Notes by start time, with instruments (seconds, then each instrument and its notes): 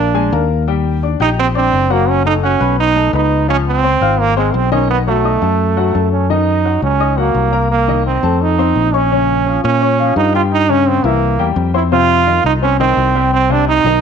Already playing: fingered electric bass A#1, trombone D4
0.14 upright piano G#3 G#4 G#5
0.32 fingered electric bass D#2, upright piano A#3 A#4 A#5
0.68 upright piano G3 G4 G5
1.03 upright piano D4 D5 D6
1.20 fingered electric bass A#1, trombone D#4, upright piano G4 G5 G6
1.40 trombone C4
1.55 trombone C4, upright piano D4 D5 D6
1.73 fingered electric bass F#1
1.90 upright piano F#3 F#4 F#5, trombone A#3
2.09 trombone C#4
2.25 upright piano A3 A4 A5, trombone D#4
2.43 trombone C#4, upright piano F#4 F#5 F#6
2.60 fingered electric bass B1, upright piano B3 B4 B5
2.80 trombone D#4
2.96 upright piano A3 A4 A5
3.13 fingered electric bass C#2, upright piano B3 B4 B5, trombone D#4
3.48 upright piano F3 F4 F5, trombone C#4
3.68 trombone C4
3.84 upright piano C4 C5 C6
4.01 fingered electric bass G#1, upright piano F4 F5 F6
4.20 trombone A#3
4.37 trombone G#3, upright piano C4 C5 C6
4.54 fingered electric bass B1, trombone C4
4.72 upright piano D#3 D#4 D#5, trombone C#4
4.90 trombone B3
5.07 upright piano F#3 F#4 F#5, trombone A3
5.25 upright piano D#4 D#5 D#6
5.42 fingered electric bass F#2, upright piano A3 A4 A5
5.77 upright piano F#3 F#4 F#5
5.94 fingered electric bass F#2, upright piano A3 A4 A5
6.12 trombone C#4
6.30 upright piano D#3 D#4 D#5, trombone D#4
6.65 upright piano F#3 F#4 F#5
6.82 fingered electric bass C#2, trombone C#4
7.00 upright piano D#4 D#5 D#6
7.17 upright piano F#3 F#4 F#5, trombone A#3
7.34 fingered electric bass C2
7.52 upright piano A#3 A#4 A#5
7.71 trombone A#3
7.88 upright piano D#3 D#4 D#5
8.07 trombone C4
8.23 fingered electric bass F2, upright piano A3 A4 A5
8.42 trombone D#4
8.58 upright piano C4 C5 C6
8.76 fingered electric bass A#1
8.94 upright piano C#4 C#5 C#6, trombone C#4
9.12 upright piano C#3 C#4 C#5
9.46 upright piano F3 F4 F5
9.64 fingered electric bass A#2, trombone C#4
9.81 upright piano C#4 C#5 C#6
9.99 upright piano F3 F4 F5
10.16 fingered electric bass G2, trombone D#4
10.34 upright piano G3 G4 G5, trombone F4
10.53 trombone D#4
10.69 upright piano C#3 C#4 C#5, trombone C#4
10.88 trombone C4
11.04 fingered electric bass C2, upright piano E3 E4 E5, trombone A#3
11.39 fingered electric bass E2, upright piano G3 G4 G5
11.56 fingered electric bass F2
11.74 upright piano C4 C5 C6, trombone E4
11.92 upright piano C3 C4 C5, trombone F4
12.27 upright piano D#3 D#4 D#5
12.44 fingered electric bass C2, trombone D#4
12.62 upright piano C4 C5 C6, trombone C#4
12.79 upright piano D#3 D#4 D#5, trombone C4
12.97 fingered electric bass C2
13.15 upright piano G3 G4 G5
13.33 trombone C4
13.49 upright piano C3 C4 C5, trombone D4
13.69 trombone D#4
13.84 fingered electric bass B1, upright piano D#3 D#4 D#5